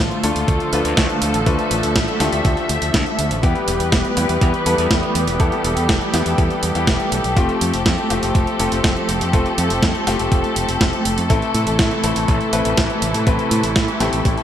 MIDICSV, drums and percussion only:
0, 0, Header, 1, 2, 480
1, 0, Start_track
1, 0, Tempo, 491803
1, 1430, Time_signature, 4, 2, 24, 8
1, 14084, End_track
2, 0, Start_track
2, 0, Title_t, "Drums"
2, 110, Note_on_c, 9, 42, 26
2, 208, Note_off_c, 9, 42, 0
2, 230, Note_on_c, 9, 42, 96
2, 327, Note_off_c, 9, 42, 0
2, 349, Note_on_c, 9, 42, 54
2, 447, Note_off_c, 9, 42, 0
2, 469, Note_on_c, 9, 36, 116
2, 469, Note_on_c, 9, 42, 54
2, 566, Note_off_c, 9, 42, 0
2, 567, Note_off_c, 9, 36, 0
2, 589, Note_on_c, 9, 42, 26
2, 686, Note_off_c, 9, 42, 0
2, 709, Note_on_c, 9, 42, 95
2, 807, Note_off_c, 9, 42, 0
2, 830, Note_on_c, 9, 42, 54
2, 927, Note_off_c, 9, 42, 0
2, 949, Note_on_c, 9, 36, 117
2, 949, Note_on_c, 9, 38, 119
2, 949, Note_on_c, 9, 42, 55
2, 1046, Note_off_c, 9, 38, 0
2, 1046, Note_off_c, 9, 42, 0
2, 1047, Note_off_c, 9, 36, 0
2, 1068, Note_on_c, 9, 42, 28
2, 1166, Note_off_c, 9, 42, 0
2, 1188, Note_on_c, 9, 42, 96
2, 1285, Note_off_c, 9, 42, 0
2, 1309, Note_on_c, 9, 42, 55
2, 1406, Note_off_c, 9, 42, 0
2, 1429, Note_on_c, 9, 36, 122
2, 1429, Note_on_c, 9, 42, 55
2, 1527, Note_off_c, 9, 36, 0
2, 1527, Note_off_c, 9, 42, 0
2, 1549, Note_on_c, 9, 42, 26
2, 1647, Note_off_c, 9, 42, 0
2, 1668, Note_on_c, 9, 42, 91
2, 1766, Note_off_c, 9, 42, 0
2, 1789, Note_on_c, 9, 42, 52
2, 1887, Note_off_c, 9, 42, 0
2, 1909, Note_on_c, 9, 36, 116
2, 1909, Note_on_c, 9, 38, 123
2, 1909, Note_on_c, 9, 42, 55
2, 2007, Note_off_c, 9, 36, 0
2, 2007, Note_off_c, 9, 38, 0
2, 2007, Note_off_c, 9, 42, 0
2, 2030, Note_on_c, 9, 42, 25
2, 2127, Note_off_c, 9, 42, 0
2, 2149, Note_on_c, 9, 38, 64
2, 2149, Note_on_c, 9, 42, 92
2, 2247, Note_off_c, 9, 38, 0
2, 2247, Note_off_c, 9, 42, 0
2, 2269, Note_on_c, 9, 42, 51
2, 2367, Note_off_c, 9, 42, 0
2, 2389, Note_on_c, 9, 36, 127
2, 2389, Note_on_c, 9, 42, 52
2, 2486, Note_off_c, 9, 42, 0
2, 2487, Note_off_c, 9, 36, 0
2, 2509, Note_on_c, 9, 42, 26
2, 2607, Note_off_c, 9, 42, 0
2, 2629, Note_on_c, 9, 42, 94
2, 2727, Note_off_c, 9, 42, 0
2, 2751, Note_on_c, 9, 42, 51
2, 2848, Note_off_c, 9, 42, 0
2, 2869, Note_on_c, 9, 36, 120
2, 2870, Note_on_c, 9, 38, 119
2, 2870, Note_on_c, 9, 42, 56
2, 2967, Note_off_c, 9, 36, 0
2, 2968, Note_off_c, 9, 38, 0
2, 2968, Note_off_c, 9, 42, 0
2, 2990, Note_on_c, 9, 42, 27
2, 3087, Note_off_c, 9, 42, 0
2, 3110, Note_on_c, 9, 42, 96
2, 3208, Note_off_c, 9, 42, 0
2, 3230, Note_on_c, 9, 42, 55
2, 3328, Note_off_c, 9, 42, 0
2, 3349, Note_on_c, 9, 36, 127
2, 3350, Note_on_c, 9, 42, 52
2, 3447, Note_off_c, 9, 36, 0
2, 3447, Note_off_c, 9, 42, 0
2, 3469, Note_on_c, 9, 42, 25
2, 3567, Note_off_c, 9, 42, 0
2, 3589, Note_on_c, 9, 42, 86
2, 3686, Note_off_c, 9, 42, 0
2, 3709, Note_on_c, 9, 42, 50
2, 3807, Note_off_c, 9, 42, 0
2, 3829, Note_on_c, 9, 36, 126
2, 3829, Note_on_c, 9, 38, 125
2, 3829, Note_on_c, 9, 42, 52
2, 3926, Note_off_c, 9, 38, 0
2, 3926, Note_off_c, 9, 42, 0
2, 3927, Note_off_c, 9, 36, 0
2, 3949, Note_on_c, 9, 42, 25
2, 4047, Note_off_c, 9, 42, 0
2, 4069, Note_on_c, 9, 42, 90
2, 4166, Note_off_c, 9, 42, 0
2, 4189, Note_on_c, 9, 42, 52
2, 4287, Note_off_c, 9, 42, 0
2, 4308, Note_on_c, 9, 42, 52
2, 4309, Note_on_c, 9, 36, 125
2, 4406, Note_off_c, 9, 42, 0
2, 4407, Note_off_c, 9, 36, 0
2, 4429, Note_on_c, 9, 42, 25
2, 4527, Note_off_c, 9, 42, 0
2, 4549, Note_on_c, 9, 42, 90
2, 4646, Note_off_c, 9, 42, 0
2, 4669, Note_on_c, 9, 42, 51
2, 4766, Note_off_c, 9, 42, 0
2, 4789, Note_on_c, 9, 36, 126
2, 4789, Note_on_c, 9, 38, 125
2, 4789, Note_on_c, 9, 42, 51
2, 4886, Note_off_c, 9, 36, 0
2, 4886, Note_off_c, 9, 38, 0
2, 4886, Note_off_c, 9, 42, 0
2, 4909, Note_on_c, 9, 42, 26
2, 5006, Note_off_c, 9, 42, 0
2, 5028, Note_on_c, 9, 42, 91
2, 5126, Note_off_c, 9, 42, 0
2, 5149, Note_on_c, 9, 42, 51
2, 5246, Note_off_c, 9, 42, 0
2, 5268, Note_on_c, 9, 36, 125
2, 5268, Note_on_c, 9, 42, 52
2, 5365, Note_off_c, 9, 42, 0
2, 5366, Note_off_c, 9, 36, 0
2, 5389, Note_on_c, 9, 42, 24
2, 5487, Note_off_c, 9, 42, 0
2, 5509, Note_on_c, 9, 42, 84
2, 5607, Note_off_c, 9, 42, 0
2, 5629, Note_on_c, 9, 42, 50
2, 5727, Note_off_c, 9, 42, 0
2, 5749, Note_on_c, 9, 36, 123
2, 5749, Note_on_c, 9, 38, 124
2, 5749, Note_on_c, 9, 42, 52
2, 5846, Note_off_c, 9, 36, 0
2, 5847, Note_off_c, 9, 38, 0
2, 5847, Note_off_c, 9, 42, 0
2, 5869, Note_on_c, 9, 42, 24
2, 5966, Note_off_c, 9, 42, 0
2, 5989, Note_on_c, 9, 38, 63
2, 5989, Note_on_c, 9, 42, 87
2, 6086, Note_off_c, 9, 38, 0
2, 6086, Note_off_c, 9, 42, 0
2, 6109, Note_on_c, 9, 42, 48
2, 6207, Note_off_c, 9, 42, 0
2, 6228, Note_on_c, 9, 36, 122
2, 6229, Note_on_c, 9, 42, 50
2, 6326, Note_off_c, 9, 36, 0
2, 6326, Note_off_c, 9, 42, 0
2, 6349, Note_on_c, 9, 42, 26
2, 6446, Note_off_c, 9, 42, 0
2, 6468, Note_on_c, 9, 42, 89
2, 6566, Note_off_c, 9, 42, 0
2, 6589, Note_on_c, 9, 42, 48
2, 6687, Note_off_c, 9, 42, 0
2, 6709, Note_on_c, 9, 36, 121
2, 6709, Note_on_c, 9, 38, 124
2, 6709, Note_on_c, 9, 42, 50
2, 6806, Note_off_c, 9, 36, 0
2, 6807, Note_off_c, 9, 38, 0
2, 6807, Note_off_c, 9, 42, 0
2, 6829, Note_on_c, 9, 42, 26
2, 6927, Note_off_c, 9, 42, 0
2, 6950, Note_on_c, 9, 42, 87
2, 7047, Note_off_c, 9, 42, 0
2, 7069, Note_on_c, 9, 42, 50
2, 7167, Note_off_c, 9, 42, 0
2, 7189, Note_on_c, 9, 36, 118
2, 7190, Note_on_c, 9, 42, 52
2, 7286, Note_off_c, 9, 36, 0
2, 7288, Note_off_c, 9, 42, 0
2, 7310, Note_on_c, 9, 42, 24
2, 7408, Note_off_c, 9, 42, 0
2, 7430, Note_on_c, 9, 42, 89
2, 7528, Note_off_c, 9, 42, 0
2, 7550, Note_on_c, 9, 42, 50
2, 7648, Note_off_c, 9, 42, 0
2, 7669, Note_on_c, 9, 36, 117
2, 7669, Note_on_c, 9, 38, 121
2, 7669, Note_on_c, 9, 42, 52
2, 7767, Note_off_c, 9, 36, 0
2, 7767, Note_off_c, 9, 38, 0
2, 7767, Note_off_c, 9, 42, 0
2, 7789, Note_on_c, 9, 42, 25
2, 7887, Note_off_c, 9, 42, 0
2, 7909, Note_on_c, 9, 42, 89
2, 8006, Note_off_c, 9, 42, 0
2, 8030, Note_on_c, 9, 42, 51
2, 8128, Note_off_c, 9, 42, 0
2, 8149, Note_on_c, 9, 36, 117
2, 8150, Note_on_c, 9, 42, 51
2, 8247, Note_off_c, 9, 36, 0
2, 8248, Note_off_c, 9, 42, 0
2, 8270, Note_on_c, 9, 42, 25
2, 8367, Note_off_c, 9, 42, 0
2, 8389, Note_on_c, 9, 42, 90
2, 8487, Note_off_c, 9, 42, 0
2, 8510, Note_on_c, 9, 42, 47
2, 8607, Note_off_c, 9, 42, 0
2, 8629, Note_on_c, 9, 36, 118
2, 8629, Note_on_c, 9, 38, 121
2, 8629, Note_on_c, 9, 42, 51
2, 8727, Note_off_c, 9, 36, 0
2, 8727, Note_off_c, 9, 38, 0
2, 8727, Note_off_c, 9, 42, 0
2, 8749, Note_on_c, 9, 42, 25
2, 8847, Note_off_c, 9, 42, 0
2, 8869, Note_on_c, 9, 42, 85
2, 8967, Note_off_c, 9, 42, 0
2, 8991, Note_on_c, 9, 42, 52
2, 9088, Note_off_c, 9, 42, 0
2, 9110, Note_on_c, 9, 36, 115
2, 9111, Note_on_c, 9, 42, 56
2, 9207, Note_off_c, 9, 36, 0
2, 9208, Note_off_c, 9, 42, 0
2, 9231, Note_on_c, 9, 42, 25
2, 9328, Note_off_c, 9, 42, 0
2, 9350, Note_on_c, 9, 42, 92
2, 9448, Note_off_c, 9, 42, 0
2, 9470, Note_on_c, 9, 42, 52
2, 9568, Note_off_c, 9, 42, 0
2, 9589, Note_on_c, 9, 36, 115
2, 9591, Note_on_c, 9, 38, 115
2, 9591, Note_on_c, 9, 42, 52
2, 9687, Note_off_c, 9, 36, 0
2, 9688, Note_off_c, 9, 38, 0
2, 9688, Note_off_c, 9, 42, 0
2, 9710, Note_on_c, 9, 42, 26
2, 9808, Note_off_c, 9, 42, 0
2, 9829, Note_on_c, 9, 38, 61
2, 9829, Note_on_c, 9, 42, 90
2, 9927, Note_off_c, 9, 38, 0
2, 9927, Note_off_c, 9, 42, 0
2, 9950, Note_on_c, 9, 42, 50
2, 10047, Note_off_c, 9, 42, 0
2, 10069, Note_on_c, 9, 36, 119
2, 10069, Note_on_c, 9, 42, 53
2, 10167, Note_off_c, 9, 36, 0
2, 10167, Note_off_c, 9, 42, 0
2, 10189, Note_on_c, 9, 42, 26
2, 10287, Note_off_c, 9, 42, 0
2, 10309, Note_on_c, 9, 42, 90
2, 10406, Note_off_c, 9, 42, 0
2, 10429, Note_on_c, 9, 42, 50
2, 10527, Note_off_c, 9, 42, 0
2, 10549, Note_on_c, 9, 36, 112
2, 10549, Note_on_c, 9, 38, 115
2, 10549, Note_on_c, 9, 42, 52
2, 10646, Note_off_c, 9, 36, 0
2, 10647, Note_off_c, 9, 38, 0
2, 10647, Note_off_c, 9, 42, 0
2, 10669, Note_on_c, 9, 42, 26
2, 10766, Note_off_c, 9, 42, 0
2, 10789, Note_on_c, 9, 42, 92
2, 10886, Note_off_c, 9, 42, 0
2, 10908, Note_on_c, 9, 42, 54
2, 11006, Note_off_c, 9, 42, 0
2, 11028, Note_on_c, 9, 42, 57
2, 11029, Note_on_c, 9, 36, 116
2, 11126, Note_off_c, 9, 36, 0
2, 11126, Note_off_c, 9, 42, 0
2, 11149, Note_on_c, 9, 42, 26
2, 11246, Note_off_c, 9, 42, 0
2, 11268, Note_on_c, 9, 42, 93
2, 11365, Note_off_c, 9, 42, 0
2, 11388, Note_on_c, 9, 42, 53
2, 11485, Note_off_c, 9, 42, 0
2, 11507, Note_on_c, 9, 38, 114
2, 11507, Note_on_c, 9, 42, 52
2, 11509, Note_on_c, 9, 36, 115
2, 11604, Note_off_c, 9, 38, 0
2, 11604, Note_off_c, 9, 42, 0
2, 11607, Note_off_c, 9, 36, 0
2, 11627, Note_on_c, 9, 42, 26
2, 11724, Note_off_c, 9, 42, 0
2, 11747, Note_on_c, 9, 42, 94
2, 11845, Note_off_c, 9, 42, 0
2, 11868, Note_on_c, 9, 42, 52
2, 11966, Note_off_c, 9, 42, 0
2, 11988, Note_on_c, 9, 42, 54
2, 11989, Note_on_c, 9, 36, 112
2, 12085, Note_off_c, 9, 42, 0
2, 12087, Note_off_c, 9, 36, 0
2, 12109, Note_on_c, 9, 42, 28
2, 12206, Note_off_c, 9, 42, 0
2, 12228, Note_on_c, 9, 42, 98
2, 12325, Note_off_c, 9, 42, 0
2, 12348, Note_on_c, 9, 42, 55
2, 12445, Note_off_c, 9, 42, 0
2, 12468, Note_on_c, 9, 38, 114
2, 12468, Note_on_c, 9, 42, 55
2, 12469, Note_on_c, 9, 36, 109
2, 12566, Note_off_c, 9, 38, 0
2, 12566, Note_off_c, 9, 42, 0
2, 12567, Note_off_c, 9, 36, 0
2, 12589, Note_on_c, 9, 42, 27
2, 12687, Note_off_c, 9, 42, 0
2, 12708, Note_on_c, 9, 42, 95
2, 12806, Note_off_c, 9, 42, 0
2, 12829, Note_on_c, 9, 42, 56
2, 12926, Note_off_c, 9, 42, 0
2, 12949, Note_on_c, 9, 36, 113
2, 12949, Note_on_c, 9, 42, 58
2, 13046, Note_off_c, 9, 42, 0
2, 13047, Note_off_c, 9, 36, 0
2, 13068, Note_on_c, 9, 42, 27
2, 13166, Note_off_c, 9, 42, 0
2, 13188, Note_on_c, 9, 42, 97
2, 13286, Note_off_c, 9, 42, 0
2, 13307, Note_on_c, 9, 42, 55
2, 13405, Note_off_c, 9, 42, 0
2, 13428, Note_on_c, 9, 38, 115
2, 13428, Note_on_c, 9, 42, 55
2, 13429, Note_on_c, 9, 36, 115
2, 13525, Note_off_c, 9, 38, 0
2, 13525, Note_off_c, 9, 42, 0
2, 13527, Note_off_c, 9, 36, 0
2, 13549, Note_on_c, 9, 42, 26
2, 13646, Note_off_c, 9, 42, 0
2, 13668, Note_on_c, 9, 38, 59
2, 13668, Note_on_c, 9, 42, 100
2, 13766, Note_off_c, 9, 38, 0
2, 13766, Note_off_c, 9, 42, 0
2, 13788, Note_on_c, 9, 42, 53
2, 13886, Note_off_c, 9, 42, 0
2, 13909, Note_on_c, 9, 42, 55
2, 13910, Note_on_c, 9, 36, 113
2, 14007, Note_off_c, 9, 36, 0
2, 14007, Note_off_c, 9, 42, 0
2, 14030, Note_on_c, 9, 42, 28
2, 14084, Note_off_c, 9, 42, 0
2, 14084, End_track
0, 0, End_of_file